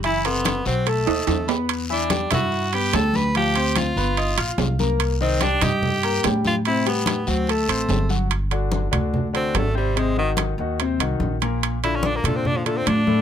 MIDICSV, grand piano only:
0, 0, Header, 1, 2, 480
1, 0, Start_track
1, 0, Tempo, 414079
1, 39, Time_signature, 4, 2, 24, 8
1, 15320, End_track
2, 0, Start_track
2, 0, Title_t, "Grand piano"
2, 0, Program_c, 0, 0
2, 45, Note_on_c, 0, 52, 79
2, 45, Note_on_c, 0, 76, 81
2, 47, Note_on_c, 0, 64, 80
2, 239, Note_off_c, 0, 52, 0
2, 240, Note_off_c, 0, 76, 0
2, 241, Note_off_c, 0, 64, 0
2, 296, Note_on_c, 0, 48, 78
2, 298, Note_on_c, 0, 69, 75
2, 304, Note_on_c, 0, 84, 74
2, 683, Note_off_c, 0, 48, 0
2, 684, Note_off_c, 0, 69, 0
2, 688, Note_off_c, 0, 84, 0
2, 763, Note_on_c, 0, 54, 73
2, 766, Note_on_c, 0, 66, 77
2, 772, Note_on_c, 0, 78, 76
2, 958, Note_off_c, 0, 54, 0
2, 960, Note_off_c, 0, 66, 0
2, 964, Note_off_c, 0, 78, 0
2, 995, Note_on_c, 0, 57, 69
2, 1000, Note_on_c, 0, 81, 64
2, 1001, Note_on_c, 0, 69, 66
2, 1194, Note_off_c, 0, 57, 0
2, 1197, Note_off_c, 0, 69, 0
2, 1197, Note_off_c, 0, 81, 0
2, 1228, Note_on_c, 0, 63, 69
2, 1230, Note_on_c, 0, 75, 72
2, 1236, Note_on_c, 0, 87, 74
2, 1626, Note_off_c, 0, 63, 0
2, 1628, Note_off_c, 0, 75, 0
2, 1631, Note_off_c, 0, 87, 0
2, 1714, Note_on_c, 0, 59, 73
2, 1714, Note_on_c, 0, 71, 74
2, 1714, Note_on_c, 0, 83, 72
2, 2110, Note_off_c, 0, 59, 0
2, 2110, Note_off_c, 0, 71, 0
2, 2110, Note_off_c, 0, 83, 0
2, 2200, Note_on_c, 0, 52, 84
2, 2204, Note_on_c, 0, 76, 84
2, 2205, Note_on_c, 0, 64, 92
2, 2396, Note_off_c, 0, 52, 0
2, 2399, Note_off_c, 0, 64, 0
2, 2399, Note_off_c, 0, 76, 0
2, 2438, Note_on_c, 0, 55, 68
2, 2440, Note_on_c, 0, 67, 68
2, 2447, Note_on_c, 0, 79, 67
2, 2635, Note_off_c, 0, 55, 0
2, 2636, Note_off_c, 0, 67, 0
2, 2640, Note_off_c, 0, 79, 0
2, 2673, Note_on_c, 0, 64, 78
2, 2677, Note_on_c, 0, 76, 77
2, 2687, Note_on_c, 0, 88, 81
2, 3069, Note_off_c, 0, 64, 0
2, 3071, Note_off_c, 0, 76, 0
2, 3077, Note_off_c, 0, 88, 0
2, 3175, Note_on_c, 0, 59, 72
2, 3181, Note_on_c, 0, 71, 75
2, 3185, Note_on_c, 0, 83, 77
2, 3365, Note_off_c, 0, 59, 0
2, 3368, Note_off_c, 0, 71, 0
2, 3371, Note_off_c, 0, 83, 0
2, 3407, Note_on_c, 0, 55, 66
2, 3410, Note_on_c, 0, 67, 65
2, 3417, Note_on_c, 0, 79, 70
2, 3797, Note_off_c, 0, 55, 0
2, 3798, Note_off_c, 0, 67, 0
2, 3803, Note_off_c, 0, 79, 0
2, 3890, Note_on_c, 0, 53, 82
2, 3893, Note_on_c, 0, 65, 76
2, 3901, Note_on_c, 0, 77, 82
2, 4082, Note_off_c, 0, 53, 0
2, 4084, Note_off_c, 0, 65, 0
2, 4088, Note_off_c, 0, 77, 0
2, 4128, Note_on_c, 0, 72, 75
2, 4130, Note_on_c, 0, 60, 76
2, 4135, Note_on_c, 0, 84, 74
2, 4517, Note_off_c, 0, 72, 0
2, 4518, Note_off_c, 0, 60, 0
2, 4521, Note_off_c, 0, 84, 0
2, 4600, Note_on_c, 0, 59, 74
2, 4608, Note_on_c, 0, 71, 79
2, 4608, Note_on_c, 0, 83, 75
2, 4796, Note_off_c, 0, 59, 0
2, 4800, Note_off_c, 0, 71, 0
2, 4800, Note_off_c, 0, 83, 0
2, 4841, Note_on_c, 0, 75, 69
2, 4841, Note_on_c, 0, 87, 67
2, 4844, Note_on_c, 0, 63, 65
2, 5036, Note_off_c, 0, 75, 0
2, 5036, Note_off_c, 0, 87, 0
2, 5038, Note_off_c, 0, 63, 0
2, 5070, Note_on_c, 0, 65, 71
2, 5081, Note_on_c, 0, 77, 75
2, 5084, Note_on_c, 0, 89, 74
2, 5466, Note_off_c, 0, 65, 0
2, 5472, Note_off_c, 0, 77, 0
2, 5474, Note_off_c, 0, 89, 0
2, 5553, Note_on_c, 0, 58, 80
2, 5560, Note_on_c, 0, 70, 77
2, 5566, Note_on_c, 0, 82, 76
2, 5948, Note_off_c, 0, 58, 0
2, 5952, Note_off_c, 0, 70, 0
2, 5955, Note_off_c, 0, 82, 0
2, 6037, Note_on_c, 0, 51, 94
2, 6039, Note_on_c, 0, 63, 90
2, 6048, Note_on_c, 0, 75, 94
2, 6233, Note_off_c, 0, 51, 0
2, 6234, Note_off_c, 0, 63, 0
2, 6240, Note_off_c, 0, 75, 0
2, 6271, Note_on_c, 0, 55, 70
2, 6277, Note_on_c, 0, 67, 72
2, 6283, Note_on_c, 0, 79, 73
2, 6470, Note_off_c, 0, 55, 0
2, 6473, Note_off_c, 0, 67, 0
2, 6477, Note_off_c, 0, 79, 0
2, 6509, Note_on_c, 0, 63, 74
2, 6519, Note_on_c, 0, 75, 78
2, 6519, Note_on_c, 0, 87, 78
2, 6905, Note_off_c, 0, 63, 0
2, 6911, Note_off_c, 0, 75, 0
2, 6911, Note_off_c, 0, 87, 0
2, 7001, Note_on_c, 0, 58, 74
2, 7003, Note_on_c, 0, 70, 78
2, 7007, Note_on_c, 0, 82, 76
2, 7195, Note_off_c, 0, 58, 0
2, 7196, Note_off_c, 0, 70, 0
2, 7199, Note_off_c, 0, 82, 0
2, 7242, Note_on_c, 0, 67, 71
2, 7244, Note_on_c, 0, 55, 70
2, 7248, Note_on_c, 0, 79, 75
2, 7633, Note_off_c, 0, 67, 0
2, 7634, Note_off_c, 0, 55, 0
2, 7636, Note_off_c, 0, 79, 0
2, 7727, Note_on_c, 0, 60, 79
2, 7728, Note_on_c, 0, 48, 82
2, 7732, Note_on_c, 0, 72, 79
2, 7919, Note_off_c, 0, 48, 0
2, 7919, Note_off_c, 0, 60, 0
2, 7922, Note_off_c, 0, 72, 0
2, 7950, Note_on_c, 0, 55, 79
2, 7954, Note_on_c, 0, 67, 75
2, 7956, Note_on_c, 0, 79, 78
2, 8346, Note_off_c, 0, 55, 0
2, 8348, Note_off_c, 0, 67, 0
2, 8349, Note_off_c, 0, 79, 0
2, 8426, Note_on_c, 0, 54, 76
2, 8430, Note_on_c, 0, 66, 78
2, 8435, Note_on_c, 0, 78, 73
2, 8626, Note_off_c, 0, 54, 0
2, 8629, Note_off_c, 0, 66, 0
2, 8632, Note_off_c, 0, 78, 0
2, 8671, Note_on_c, 0, 57, 65
2, 8677, Note_on_c, 0, 69, 70
2, 8677, Note_on_c, 0, 81, 69
2, 8869, Note_off_c, 0, 57, 0
2, 8873, Note_off_c, 0, 69, 0
2, 8873, Note_off_c, 0, 81, 0
2, 8909, Note_on_c, 0, 60, 70
2, 8913, Note_on_c, 0, 72, 70
2, 8921, Note_on_c, 0, 84, 76
2, 9305, Note_off_c, 0, 60, 0
2, 9307, Note_off_c, 0, 72, 0
2, 9312, Note_off_c, 0, 84, 0
2, 9383, Note_on_c, 0, 54, 72
2, 9390, Note_on_c, 0, 66, 73
2, 9393, Note_on_c, 0, 78, 70
2, 9585, Note_off_c, 0, 54, 0
2, 9589, Note_off_c, 0, 66, 0
2, 9591, Note_off_c, 0, 78, 0
2, 9862, Note_on_c, 0, 50, 77
2, 9872, Note_on_c, 0, 66, 77
2, 9874, Note_on_c, 0, 62, 73
2, 10261, Note_off_c, 0, 50, 0
2, 10267, Note_off_c, 0, 66, 0
2, 10268, Note_off_c, 0, 62, 0
2, 10328, Note_on_c, 0, 50, 75
2, 10332, Note_on_c, 0, 62, 76
2, 10336, Note_on_c, 0, 66, 75
2, 10733, Note_off_c, 0, 50, 0
2, 10735, Note_off_c, 0, 62, 0
2, 10738, Note_off_c, 0, 66, 0
2, 10816, Note_on_c, 0, 50, 72
2, 10820, Note_on_c, 0, 62, 73
2, 10822, Note_on_c, 0, 66, 75
2, 11218, Note_off_c, 0, 50, 0
2, 11220, Note_off_c, 0, 62, 0
2, 11222, Note_off_c, 0, 66, 0
2, 11299, Note_on_c, 0, 60, 88
2, 11301, Note_on_c, 0, 48, 86
2, 11306, Note_on_c, 0, 72, 82
2, 11503, Note_off_c, 0, 60, 0
2, 11504, Note_off_c, 0, 48, 0
2, 11507, Note_off_c, 0, 72, 0
2, 11543, Note_on_c, 0, 48, 82
2, 11547, Note_on_c, 0, 60, 76
2, 11549, Note_on_c, 0, 72, 78
2, 11745, Note_off_c, 0, 48, 0
2, 11747, Note_off_c, 0, 60, 0
2, 11749, Note_off_c, 0, 72, 0
2, 11798, Note_on_c, 0, 51, 80
2, 11800, Note_on_c, 0, 63, 78
2, 11801, Note_on_c, 0, 66, 76
2, 12191, Note_off_c, 0, 51, 0
2, 12192, Note_off_c, 0, 63, 0
2, 12193, Note_off_c, 0, 66, 0
2, 12277, Note_on_c, 0, 51, 75
2, 12284, Note_on_c, 0, 63, 74
2, 12292, Note_on_c, 0, 66, 78
2, 12474, Note_off_c, 0, 51, 0
2, 12478, Note_off_c, 0, 63, 0
2, 12483, Note_off_c, 0, 66, 0
2, 12531, Note_on_c, 0, 48, 76
2, 12531, Note_on_c, 0, 60, 78
2, 12537, Note_on_c, 0, 72, 78
2, 12722, Note_off_c, 0, 48, 0
2, 12722, Note_off_c, 0, 60, 0
2, 12726, Note_off_c, 0, 72, 0
2, 12753, Note_on_c, 0, 51, 74
2, 12754, Note_on_c, 0, 63, 76
2, 12758, Note_on_c, 0, 66, 72
2, 13149, Note_off_c, 0, 51, 0
2, 13149, Note_off_c, 0, 63, 0
2, 13151, Note_off_c, 0, 66, 0
2, 13237, Note_on_c, 0, 46, 84
2, 13241, Note_on_c, 0, 58, 81
2, 13247, Note_on_c, 0, 70, 84
2, 13631, Note_off_c, 0, 46, 0
2, 13633, Note_off_c, 0, 58, 0
2, 13636, Note_off_c, 0, 70, 0
2, 13719, Note_on_c, 0, 62, 81
2, 13721, Note_on_c, 0, 50, 79
2, 13727, Note_on_c, 0, 65, 76
2, 14112, Note_off_c, 0, 62, 0
2, 14113, Note_off_c, 0, 50, 0
2, 14117, Note_off_c, 0, 65, 0
2, 14210, Note_on_c, 0, 50, 76
2, 14216, Note_on_c, 0, 62, 73
2, 14217, Note_on_c, 0, 65, 81
2, 14599, Note_off_c, 0, 50, 0
2, 14602, Note_off_c, 0, 62, 0
2, 14603, Note_off_c, 0, 65, 0
2, 14674, Note_on_c, 0, 50, 74
2, 14676, Note_on_c, 0, 62, 75
2, 14678, Note_on_c, 0, 65, 78
2, 15069, Note_off_c, 0, 50, 0
2, 15070, Note_off_c, 0, 62, 0
2, 15072, Note_off_c, 0, 65, 0
2, 15148, Note_on_c, 0, 57, 84
2, 15154, Note_on_c, 0, 69, 88
2, 15156, Note_on_c, 0, 45, 83
2, 15320, Note_off_c, 0, 45, 0
2, 15320, Note_off_c, 0, 57, 0
2, 15320, Note_off_c, 0, 69, 0
2, 15320, End_track
0, 0, End_of_file